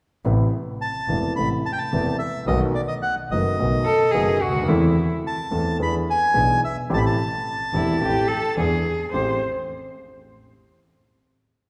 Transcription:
0.25 grand piano A1 A2 C3 A3 B3 E4, double bass A1
0.81 bandoneon A5
1.08 grand piano E1 E2 C3 A3 B3 E4, double bass E1
1.36 grand piano A1 A2 C3 A3 B3 E4, double bass A1, bandoneon B5
1.66 bandoneon A5
1.73 bandoneon G5
1.78 bandoneon A5
1.92 grand piano E1 E2 C3 A3 B3 E4, double bass E1
2.19 bandoneon E5
2.47 double bass B1, grand piano B1 B2 D#3 A3 B3 F#4, bandoneon D#5
2.75 bandoneon D5
2.88 bandoneon D#5
3.02 bandoneon F#5
3.31 double bass F#1, grand piano F#1 F#2 D#3 A3 B3 F#4, bandoneon D#5
3.59 grand piano B1 B2 D#3 A3 B3 F#4, double bass B1
3.85 cello A4
4.11 grand piano F#1 F#2 D#3 A3 B3 F#4, double bass F#1, cello G#4
4.42 double bass D2, cello F#4
4.48 grand piano C#2
4.56 grand piano D2
4.63 grand piano D#2
4.68 grand piano E2 E3 A3 C4 A4, double bass E2, cello E4
5.27 bandoneon A5
5.51 double bass E2, grand piano E2 E3 A3 C4 A4
5.79 grand piano E2 E3 B3 D4 G#4, double bass E2, bandoneon B5
6.10 bandoneon G#5
6.34 grand piano B1 B2 E3 B3 D4 G#4, double bass B1
6.65 bandoneon E5
6.90 grand piano A1 A2 E3 A3 C4 G4, double bass A1
6.94 bandoneon A5 B5
7.06 bandoneon A5
7.73 double bass E1, grand piano E1 E2 E3 A3 C4 G4, cello E4
8.01 grand piano A1 A2 E3 A3 C4 G4, double bass A1, cello G4
8.28 cello A4
8.57 grand piano E2 E3 B3 D4 G#4, double bass E2, cello G#4
9.12 grand piano A1 A3 C4 G4, double bass A1, cello C5

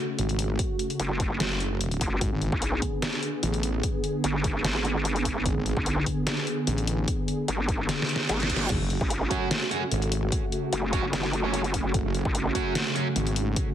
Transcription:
Already playing: supersaw synth C#3 A3 F#4
0.19 wobble bass G#1, closed hi-hat
0.29 closed hi-hat
0.39 open hi-hat
0.59 kick, closed hi-hat
0.79 closed hi-hat
0.90 closed hi-hat
1.00 wobble bass F#1, closed hi-hat
1.20 kick, open hi-hat
1.40 wobble bass F#1, snare, closed hi-hat
1.60 closed hi-hat
1.81 closed hi-hat
1.91 closed hi-hat
2.01 wobble bass F#1, kick, open hi-hat
2.21 wobble bass G#1, supersaw synth D3 B3 G#4, kick, closed hi-hat
2.32 wobble bass G#1
2.42 closed hi-hat
2.52 wobble bass B1, kick
2.62 closed hi-hat
2.82 kick, open hi-hat
3.02 snare, closed hi-hat
3.23 closed hi-hat
3.43 wobble bass A1, closed hi-hat
3.54 closed hi-hat
3.63 open hi-hat
3.83 kick, closed hi-hat
4.04 closed hi-hat
4.24 wobble bass G#1, closed hi-hat
4.44 kick, open hi-hat
4.65 wobble bass G#1, snare, closed hi-hat
4.85 closed hi-hat
5.05 closed hi-hat
5.16 closed hi-hat
5.25 kick, open hi-hat
5.46 wobble bass G#1, kick, closed hi-hat
5.56 wobble bass G#1
5.66 closed hi-hat
5.77 wobble bass B1, kick
5.86 closed hi-hat
6.06 kick, open hi-hat
6.27 snare, closed hi-hat
6.47 closed hi-hat
6.67 wobble bass A1, closed hi-hat
6.78 closed hi-hat
6.87 open hi-hat
7.08 kick, closed hi-hat
7.28 closed hi-hat
7.48 wobble bass G#1, closed hi-hat
7.69 kick, open hi-hat
7.89 snare, closed hi-hat, reverse cymbal
8.02 snare
8.09 closed hi-hat
8.16 snare
8.29 wobble bass G#1, snare, closed hi-hat
8.40 snare, closed hi-hat
8.50 kick, open hi-hat
8.56 snare
8.70 wobble bass F#1, supersaw synth C#3 A3 F#4, kick, closed hi-hat, crash
8.81 wobble bass F#1
8.90 closed hi-hat
9.01 wobble bass A1, kick
9.10 closed hi-hat
9.31 distorted electric guitar F#3 C#4 F#4, kick, open hi-hat
9.51 snare, closed hi-hat
9.71 distorted electric guitar F#3 C#4 F#4, closed hi-hat
9.91 wobble bass G#1, closed hi-hat
10.02 closed hi-hat
10.12 open hi-hat
10.32 kick, closed hi-hat
10.52 closed hi-hat
10.73 wobble bass F#1, closed hi-hat
10.93 distorted electric guitar F#3 C#4 F#4, kick, open hi-hat
11.13 wobble bass F#1, snare, closed hi-hat
11.33 closed hi-hat
11.44 distorted electric guitar F#3 C#4 F#4
11.54 closed hi-hat
11.64 closed hi-hat
11.74 kick, open hi-hat
11.94 wobble bass F#1, kick, closed hi-hat
12.05 wobble bass F#1
12.14 closed hi-hat
12.25 wobble bass A1, kick
12.35 closed hi-hat
12.55 distorted electric guitar F#3 C#4 F#4, kick, open hi-hat
12.75 snare, closed hi-hat
12.95 distorted electric guitar F#3 C#4 F#4, closed hi-hat
13.16 wobble bass G#1, closed hi-hat
13.27 closed hi-hat
13.36 open hi-hat
13.56 kick, closed hi-hat

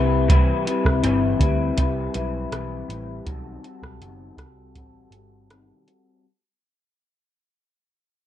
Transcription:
Already playing: picked electric bass C2, clean electric guitar G3 C4 E4 B4
0.28 clean electric guitar C3 E3 G3 C4 E4 B4, kick, closed hi-hat
0.65 clean electric guitar G3 C4 E4 B4, closed hi-hat
0.85 picked electric bass C2, kick, cross-stick
1.03 picked electric bass G1, clean electric guitar C3 E3 G3 C4 E4 B4, closed hi-hat
1.39 picked electric bass D2, clean electric guitar G3 C4 E4 B4, kick, closed hi-hat
1.77 picked electric bass C2, clean electric guitar G3 C4 E4 B4, kick, closed hi-hat
2.14 picked electric bass B1, clean electric guitar G3 C4 E4 B4, closed hi-hat
2.52 picked electric bass B1, clean electric guitar E3 G3 C4 E4 B4, cross-stick, closed hi-hat
2.88 picked electric bass A1, clean electric guitar G3 C4 E4 B4, closed hi-hat
3.26 picked electric bass B1, clean electric guitar B2 D#3 G3 C4 F#4 A4, kick, closed hi-hat
3.63 clean electric guitar G3 C4 F#4 A4, closed hi-hat
3.83 picked electric bass B1, kick, cross-stick
4.00 picked electric bass F#1, clean electric guitar B2 D#3 G3 C4 F#4 A4, closed hi-hat
4.37 picked electric bass C2, clean electric guitar G3 C4 F#4 A4, kick, cross-stick, closed hi-hat
4.75 picked electric bass A1, clean electric guitar G3 C4 F#4 A4, kick, closed hi-hat
5.11 picked electric bass G1, clean electric guitar C4 F#4 A4, closed hi-hat
5.15 clean electric guitar G3
5.50 clean electric guitar B2 D#3 G3 C4 F#4 A4, cross-stick, closed hi-hat
5.87 clean electric guitar G3 C4 F#4 A4, closed hi-hat

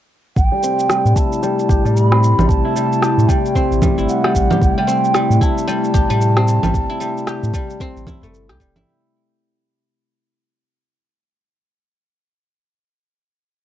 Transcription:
0.35 sub bass A1, ambient pad C3 G3 A3 E4, bansuri G5, kick, shaker
0.52 guzheng G3
0.63 guzheng C4, shaker
0.79 shaker
0.89 guzheng G3, cross-stick, shaker
1.05 sub bass A2, shaker
1.15 guzheng E4, bansuri A5, kick, shaker
1.33 shaker
1.43 guzheng G3, shaker
1.59 shaker
1.69 sub bass A1, guzheng G4, kick, shaker
1.85 sub bass A2, guzheng G3, shaker
1.94 bansuri B5, shaker
2.12 guzheng C4, cross-stick
2.23 shaker
2.38 sub bass A1, guzheng G3, low conga, shaker
2.47 sub bass A1, bansuri A5, kick, shaker
2.65 guzheng E4
2.76 guzheng G3, shaker
2.93 shaker
3.02 guzheng G4, cross-stick, shaker
3.18 sub bass A2, shaker
3.28 guzheng G3, bansuri G5, kick, shaker
3.46 shaker
3.55 guzheng C4, kick, shaker
3.71 sub bass A1, shaker
3.82 guzheng G3, kick, low conga, shaker
3.98 sub bass G1, guzheng E4, shaker
4.08 bansuri F#5, shaker
4.24 guzheng G3, cross-stick
4.35 sub bass A1, kick, shaker
4.50 guzheng G4, low conga, shaker
4.61 sub bass A1, bansuri F#5, kick, shaker
4.73 bansuri G5
4.78 guzheng G3
4.87 guzheng C4, shaker
5.04 shaker
5.14 guzheng G3, cross-stick, shaker
5.30 sub bass A2, shaker
5.41 guzheng E4, bansuri A5, kick, shaker
5.58 shaker
5.68 guzheng G3, shaker
5.84 shaker
5.94 sub bass A1, guzheng G4, kick, shaker
6.10 sub bass A2, guzheng G3, shaker
6.21 shaker
6.37 guzheng C4, cross-stick
6.48 shaker
6.63 sub bass A1, guzheng G3, low conga, shaker
6.74 sub bass A1, kick, shaker
6.90 guzheng E4
7.00 guzheng G3, shaker
7.17 shaker
7.27 guzheng G4, cross-stick, shaker
7.43 sub bass A2, shaker
7.54 guzheng G3, kick, shaker
7.70 shaker
7.80 guzheng C4, kick, shaker
7.96 sub bass A1, shaker
8.07 guzheng E4, kick, low conga, shaker
8.22 sub bass G1, guzheng A3, udu, shaker
8.35 shaker
8.49 sub bass C2, guzheng G4, cross-stick
8.60 sub bass E1, guzheng G3, kick, shaker
8.75 sub bass A1, guzheng E4, low conga, shaker

